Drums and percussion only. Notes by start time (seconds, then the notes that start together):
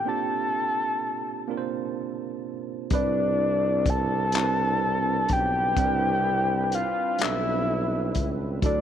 2.90 kick, closed hi-hat
3.86 kick, closed hi-hat
4.32 clap, closed hi-hat
5.29 kick, closed hi-hat
5.77 kick, closed hi-hat
6.72 closed hi-hat
7.19 clap, closed hi-hat
8.15 kick, closed hi-hat
8.62 kick, closed hi-hat